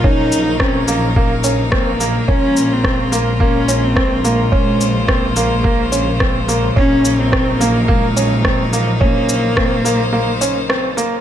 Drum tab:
SH |-x-x-x-x|-x-x-x-x|-x-x-x-x|-x-x-x-x|
SD |--r---r-|--r---r-|--r---r-|--r---r-|
BD |o-o-o-o-|o-o-o-o-|o-o-o-o-|o-o-o-o-|

SH |-x-x-x-x|
SD |--r---r-|
BD |o-o-----|